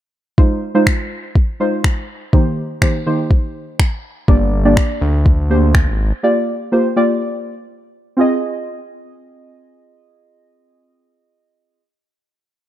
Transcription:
0.38 0.60 G#3 medium
0.38 0.60 D#4 medium
0.38 0.60 F4 medium
0.38 0.60 C5 medium
0.38 kick loud
0.74 1.25 G#3 medium
0.74 1.25 D#4 medium
0.74 1.25 F4 medium
0.74 1.25 C5 medium
0.87 finger snap loud
0.87 kick loud
1.35 kick loud
1.60 2.03 G#3 medium
1.60 2.03 D#4 medium
1.60 2.03 F4 medium
1.60 2.03 C5 loud
1.84 finger snap loud
1.84 kick loud
2.33 2.62 D#3 medium
2.33 2.62 A#3 medium
2.33 2.62 D#4 medium
2.33 2.62 G4 medium
2.33 2.62 C5 medium
2.33 kick loud
2.82 2.96 D#3 medium
2.82 2.96 A#3 medium
2.82 2.96 D#4 medium
2.82 2.96 G4 medium
2.82 2.97 C5 medium
2.82 finger snap loud
2.82 kick loud
3.06 3.64 D#3 medium
3.06 3.64 A#3 medium
3.06 3.64 D#4 medium
3.06 3.64 G4 medium
3.06 3.64 C5 medium
3.31 kick loud
3.79 finger snap loud
3.79 kick loud
4.28 4.79 G1 loud
4.28 4.50 A#3 medium
4.28 4.50 D4 medium
4.28 4.50 G4 medium
4.28 4.50 D5 loud
4.28 kick loud
4.65 5.15 A#3 medium
4.65 5.15 D4 medium
4.65 5.15 G4 medium
4.65 5.16 D5 medium
4.77 finger snap loud
4.77 kick loud
5.01 5.88 D2 medium
5.26 kick loud
5.50 5.93 A#3 medium
5.50 5.94 D4 medium
5.50 5.94 G4 medium
5.50 5.94 C5 loud
5.75 finger snap loud
5.75 kick loud
5.87 6.12 G#1 medium
6.23 6.52 A#3 medium
6.23 6.52 F4 medium
6.23 6.52 G4 medium
6.23 6.52 D5 medium
6.72 6.86 A#3 medium
6.72 6.87 F4 medium
6.72 6.87 G4 medium
6.72 6.87 C5 medium
6.96 7.54 A#3 medium
6.96 7.54 F4 medium
6.96 7.54 G4 medium
6.96 7.54 D5 medium
8.17 11.78 C4 medium
8.17 11.79 F4 medium
8.17 11.80 G#4 medium
8.17 11.82 D#5 medium

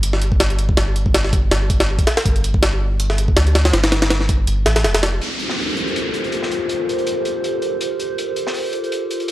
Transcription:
0.00 0.76 G1 loud
0.00 closed hi-hat medium
0.13 snare soft
0.22 closed hi-hat medium
0.32 kick medium
0.40 snare loud
0.40 closed hi-hat medium
0.50 closed hi-hat soft
0.59 closed hi-hat medium
0.69 kick medium
0.77 1.50 G1 loud
0.77 snare loud
0.77 closed hi-hat medium
0.96 closed hi-hat medium
1.06 kick medium
1.14 snare loud
1.14 closed hi-hat medium
1.25 snare soft
1.33 kick medium
1.33 closed hi-hat medium
1.51 2.05 G1 medium
1.51 snare loud
1.51 closed hi-hat medium
1.70 kick medium
1.70 closed hi-hat medium
1.80 snare loud
1.80 closed hi-hat medium
1.99 kick medium
1.99 closed hi-hat medium
2.07 snare loud
2.07 closed hi-hat medium
2.17 snare loud
2.17 closed hi-hat medium
2.25 3.35 G1 loud
2.25 kick loud
2.25 closed hi-hat medium
2.36 closed hi-hat soft
2.44 closed hi-hat medium
2.54 kick loud
2.63 snare loud
2.63 closed hi-hat medium
3.00 closed hi-hat medium
3.10 snare soft
3.18 closed hi-hat medium
3.28 kick medium
3.36 3.72 D2 medium
3.36 snare loud
3.36 closed hi-hat medium
3.47 closed hi-hat soft
3.55 snare loud
3.55 closed hi-hat medium
3.65 snare loud
3.65 closed hi-hat medium
3.73 4.46 G1 loud
3.73 snare loud
3.73 closed hi-hat medium
3.84 snare loud
3.84 closed hi-hat medium
3.92 snare loud
3.92 closed hi-hat medium
4.02 snare loud
4.02 closed hi-hat medium
4.10 snare loud
4.10 closed hi-hat medium
4.21 snare soft
4.29 kick medium
4.29 closed hi-hat medium
4.47 4.65 G1 medium
4.47 closed hi-hat medium
4.66 4.86 A1 medium
4.66 snare loud
4.66 closed hi-hat medium
4.76 snare loud
4.76 closed hi-hat medium
4.84 5.20 F1 medium
4.84 snare loud
4.84 closed hi-hat medium
4.95 snare loud
4.95 closed hi-hat medium
5.03 snare loud
5.03 closed hi-hat medium
5.21 9.31 F4 medium
5.21 9.31 G4 medium
5.21 9.31 A4 medium
5.21 9.31 A#4 medium
5.21 9.31 C5 medium
5.21 closed hi-hat medium
5.21 downlifter medium
5.39 closed hi-hat medium
5.49 snare soft
5.58 open hi-hat medium
5.77 closed hi-hat medium
5.87 closed hi-hat soft
5.96 closed hi-hat medium
6.14 closed hi-hat medium
6.24 closed hi-hat soft
6.32 closed hi-hat medium
6.43 snare soft
6.51 closed hi-hat medium
6.69 closed hi-hat medium
6.89 closed hi-hat medium
6.98 closed hi-hat soft
7.07 closed hi-hat medium
7.25 closed hi-hat medium
7.44 closed hi-hat medium
7.62 closed hi-hat medium
7.81 closed hi-hat medium
8.00 closed hi-hat medium
8.18 closed hi-hat medium
8.36 closed hi-hat medium
8.47 snare soft
8.54 open hi-hat medium
8.73 closed hi-hat medium
8.84 closed hi-hat soft
8.92 closed hi-hat medium
9.11 closed hi-hat medium
9.20 closed hi-hat soft
9.28 closed hi-hat medium

